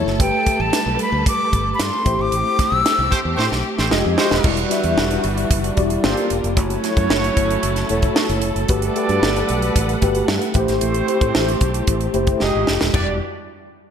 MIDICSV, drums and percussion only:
0, 0, Header, 1, 2, 480
1, 0, Start_track
1, 0, Key_signature, 1, "minor"
1, 0, Tempo, 530973
1, 175, Time_signature, 4, 2, 24, 8
1, 12570, End_track
2, 0, Start_track
2, 0, Title_t, "Drums"
2, 62, Note_on_c, 9, 38, 35
2, 152, Note_off_c, 9, 38, 0
2, 179, Note_on_c, 9, 36, 113
2, 180, Note_on_c, 9, 42, 84
2, 270, Note_off_c, 9, 36, 0
2, 270, Note_off_c, 9, 42, 0
2, 419, Note_on_c, 9, 42, 74
2, 421, Note_on_c, 9, 36, 82
2, 509, Note_off_c, 9, 42, 0
2, 511, Note_off_c, 9, 36, 0
2, 660, Note_on_c, 9, 38, 103
2, 660, Note_on_c, 9, 42, 89
2, 750, Note_off_c, 9, 42, 0
2, 751, Note_off_c, 9, 38, 0
2, 896, Note_on_c, 9, 42, 70
2, 986, Note_off_c, 9, 42, 0
2, 1141, Note_on_c, 9, 36, 101
2, 1144, Note_on_c, 9, 42, 91
2, 1232, Note_off_c, 9, 36, 0
2, 1235, Note_off_c, 9, 42, 0
2, 1383, Note_on_c, 9, 36, 82
2, 1383, Note_on_c, 9, 42, 59
2, 1474, Note_off_c, 9, 36, 0
2, 1474, Note_off_c, 9, 42, 0
2, 1623, Note_on_c, 9, 38, 113
2, 1624, Note_on_c, 9, 42, 104
2, 1714, Note_off_c, 9, 38, 0
2, 1714, Note_off_c, 9, 42, 0
2, 1859, Note_on_c, 9, 42, 77
2, 1861, Note_on_c, 9, 36, 105
2, 1950, Note_off_c, 9, 42, 0
2, 1952, Note_off_c, 9, 36, 0
2, 2098, Note_on_c, 9, 42, 87
2, 2188, Note_off_c, 9, 42, 0
2, 2341, Note_on_c, 9, 36, 89
2, 2343, Note_on_c, 9, 42, 78
2, 2345, Note_on_c, 9, 38, 33
2, 2432, Note_off_c, 9, 36, 0
2, 2434, Note_off_c, 9, 42, 0
2, 2436, Note_off_c, 9, 38, 0
2, 2583, Note_on_c, 9, 38, 102
2, 2583, Note_on_c, 9, 42, 89
2, 2673, Note_off_c, 9, 42, 0
2, 2674, Note_off_c, 9, 38, 0
2, 2821, Note_on_c, 9, 36, 94
2, 2821, Note_on_c, 9, 42, 72
2, 2911, Note_off_c, 9, 36, 0
2, 2912, Note_off_c, 9, 42, 0
2, 3064, Note_on_c, 9, 38, 59
2, 3155, Note_off_c, 9, 38, 0
2, 3182, Note_on_c, 9, 38, 53
2, 3272, Note_off_c, 9, 38, 0
2, 3422, Note_on_c, 9, 38, 67
2, 3512, Note_off_c, 9, 38, 0
2, 3538, Note_on_c, 9, 38, 89
2, 3628, Note_off_c, 9, 38, 0
2, 3777, Note_on_c, 9, 38, 99
2, 3867, Note_off_c, 9, 38, 0
2, 3898, Note_on_c, 9, 38, 96
2, 3988, Note_off_c, 9, 38, 0
2, 4014, Note_on_c, 9, 49, 96
2, 4016, Note_on_c, 9, 36, 126
2, 4104, Note_off_c, 9, 49, 0
2, 4107, Note_off_c, 9, 36, 0
2, 4130, Note_on_c, 9, 42, 51
2, 4220, Note_off_c, 9, 42, 0
2, 4257, Note_on_c, 9, 42, 80
2, 4259, Note_on_c, 9, 38, 31
2, 4347, Note_off_c, 9, 42, 0
2, 4349, Note_off_c, 9, 38, 0
2, 4371, Note_on_c, 9, 42, 50
2, 4461, Note_off_c, 9, 42, 0
2, 4498, Note_on_c, 9, 38, 105
2, 4589, Note_off_c, 9, 38, 0
2, 4616, Note_on_c, 9, 42, 50
2, 4706, Note_off_c, 9, 42, 0
2, 4734, Note_on_c, 9, 42, 72
2, 4824, Note_off_c, 9, 42, 0
2, 4858, Note_on_c, 9, 42, 57
2, 4949, Note_off_c, 9, 42, 0
2, 4977, Note_on_c, 9, 42, 94
2, 4978, Note_on_c, 9, 36, 99
2, 5068, Note_off_c, 9, 36, 0
2, 5068, Note_off_c, 9, 42, 0
2, 5099, Note_on_c, 9, 42, 52
2, 5190, Note_off_c, 9, 42, 0
2, 5215, Note_on_c, 9, 42, 61
2, 5220, Note_on_c, 9, 36, 83
2, 5305, Note_off_c, 9, 42, 0
2, 5311, Note_off_c, 9, 36, 0
2, 5335, Note_on_c, 9, 42, 52
2, 5425, Note_off_c, 9, 42, 0
2, 5459, Note_on_c, 9, 38, 119
2, 5549, Note_off_c, 9, 38, 0
2, 5580, Note_on_c, 9, 42, 48
2, 5671, Note_off_c, 9, 42, 0
2, 5698, Note_on_c, 9, 42, 80
2, 5788, Note_off_c, 9, 42, 0
2, 5823, Note_on_c, 9, 42, 47
2, 5913, Note_off_c, 9, 42, 0
2, 5938, Note_on_c, 9, 36, 118
2, 5938, Note_on_c, 9, 42, 90
2, 6028, Note_off_c, 9, 36, 0
2, 6028, Note_off_c, 9, 42, 0
2, 6059, Note_on_c, 9, 42, 53
2, 6150, Note_off_c, 9, 42, 0
2, 6181, Note_on_c, 9, 42, 77
2, 6183, Note_on_c, 9, 38, 31
2, 6271, Note_off_c, 9, 42, 0
2, 6273, Note_off_c, 9, 38, 0
2, 6299, Note_on_c, 9, 36, 90
2, 6299, Note_on_c, 9, 42, 49
2, 6389, Note_off_c, 9, 42, 0
2, 6390, Note_off_c, 9, 36, 0
2, 6421, Note_on_c, 9, 38, 106
2, 6512, Note_off_c, 9, 38, 0
2, 6545, Note_on_c, 9, 42, 48
2, 6635, Note_off_c, 9, 42, 0
2, 6660, Note_on_c, 9, 42, 70
2, 6661, Note_on_c, 9, 36, 91
2, 6751, Note_off_c, 9, 42, 0
2, 6752, Note_off_c, 9, 36, 0
2, 6784, Note_on_c, 9, 42, 57
2, 6875, Note_off_c, 9, 42, 0
2, 6897, Note_on_c, 9, 42, 92
2, 6987, Note_off_c, 9, 42, 0
2, 7015, Note_on_c, 9, 38, 35
2, 7016, Note_on_c, 9, 42, 51
2, 7105, Note_off_c, 9, 38, 0
2, 7107, Note_off_c, 9, 42, 0
2, 7134, Note_on_c, 9, 42, 61
2, 7224, Note_off_c, 9, 42, 0
2, 7253, Note_on_c, 9, 42, 49
2, 7257, Note_on_c, 9, 36, 88
2, 7343, Note_off_c, 9, 42, 0
2, 7348, Note_off_c, 9, 36, 0
2, 7376, Note_on_c, 9, 38, 110
2, 7467, Note_off_c, 9, 38, 0
2, 7497, Note_on_c, 9, 42, 49
2, 7588, Note_off_c, 9, 42, 0
2, 7607, Note_on_c, 9, 42, 80
2, 7697, Note_off_c, 9, 42, 0
2, 7738, Note_on_c, 9, 42, 46
2, 7829, Note_off_c, 9, 42, 0
2, 7851, Note_on_c, 9, 42, 85
2, 7857, Note_on_c, 9, 36, 120
2, 7941, Note_off_c, 9, 42, 0
2, 7948, Note_off_c, 9, 36, 0
2, 7974, Note_on_c, 9, 42, 55
2, 8065, Note_off_c, 9, 42, 0
2, 8098, Note_on_c, 9, 42, 71
2, 8189, Note_off_c, 9, 42, 0
2, 8218, Note_on_c, 9, 42, 47
2, 8308, Note_off_c, 9, 42, 0
2, 8344, Note_on_c, 9, 38, 105
2, 8434, Note_off_c, 9, 38, 0
2, 8465, Note_on_c, 9, 42, 48
2, 8555, Note_off_c, 9, 42, 0
2, 8575, Note_on_c, 9, 42, 63
2, 8666, Note_off_c, 9, 42, 0
2, 8699, Note_on_c, 9, 42, 55
2, 8789, Note_off_c, 9, 42, 0
2, 8821, Note_on_c, 9, 36, 99
2, 8821, Note_on_c, 9, 42, 96
2, 8911, Note_off_c, 9, 36, 0
2, 8911, Note_off_c, 9, 42, 0
2, 8940, Note_on_c, 9, 42, 49
2, 9031, Note_off_c, 9, 42, 0
2, 9057, Note_on_c, 9, 42, 60
2, 9061, Note_on_c, 9, 36, 87
2, 9147, Note_off_c, 9, 42, 0
2, 9151, Note_off_c, 9, 36, 0
2, 9173, Note_on_c, 9, 42, 52
2, 9263, Note_off_c, 9, 42, 0
2, 9296, Note_on_c, 9, 38, 114
2, 9386, Note_off_c, 9, 38, 0
2, 9416, Note_on_c, 9, 42, 50
2, 9506, Note_off_c, 9, 42, 0
2, 9528, Note_on_c, 9, 42, 78
2, 9537, Note_on_c, 9, 36, 101
2, 9619, Note_off_c, 9, 42, 0
2, 9627, Note_off_c, 9, 36, 0
2, 9656, Note_on_c, 9, 38, 33
2, 9657, Note_on_c, 9, 42, 50
2, 9746, Note_off_c, 9, 38, 0
2, 9747, Note_off_c, 9, 42, 0
2, 9774, Note_on_c, 9, 42, 88
2, 9864, Note_off_c, 9, 42, 0
2, 9893, Note_on_c, 9, 42, 53
2, 9983, Note_off_c, 9, 42, 0
2, 10019, Note_on_c, 9, 42, 70
2, 10109, Note_off_c, 9, 42, 0
2, 10136, Note_on_c, 9, 36, 87
2, 10136, Note_on_c, 9, 42, 48
2, 10227, Note_off_c, 9, 36, 0
2, 10227, Note_off_c, 9, 42, 0
2, 10258, Note_on_c, 9, 38, 105
2, 10349, Note_off_c, 9, 38, 0
2, 10383, Note_on_c, 9, 42, 49
2, 10473, Note_off_c, 9, 42, 0
2, 10493, Note_on_c, 9, 42, 67
2, 10497, Note_on_c, 9, 36, 92
2, 10583, Note_off_c, 9, 42, 0
2, 10587, Note_off_c, 9, 36, 0
2, 10615, Note_on_c, 9, 42, 54
2, 10706, Note_off_c, 9, 42, 0
2, 10733, Note_on_c, 9, 42, 92
2, 10736, Note_on_c, 9, 36, 101
2, 10824, Note_off_c, 9, 42, 0
2, 10827, Note_off_c, 9, 36, 0
2, 10853, Note_on_c, 9, 42, 45
2, 10944, Note_off_c, 9, 42, 0
2, 10973, Note_on_c, 9, 42, 57
2, 11063, Note_off_c, 9, 42, 0
2, 11090, Note_on_c, 9, 42, 46
2, 11095, Note_on_c, 9, 36, 91
2, 11181, Note_off_c, 9, 42, 0
2, 11186, Note_off_c, 9, 36, 0
2, 11211, Note_on_c, 9, 38, 58
2, 11302, Note_off_c, 9, 38, 0
2, 11456, Note_on_c, 9, 38, 86
2, 11546, Note_off_c, 9, 38, 0
2, 11578, Note_on_c, 9, 38, 93
2, 11669, Note_off_c, 9, 38, 0
2, 11697, Note_on_c, 9, 36, 99
2, 11699, Note_on_c, 9, 43, 98
2, 11699, Note_on_c, 9, 57, 83
2, 11788, Note_off_c, 9, 36, 0
2, 11790, Note_off_c, 9, 43, 0
2, 11790, Note_off_c, 9, 57, 0
2, 12570, End_track
0, 0, End_of_file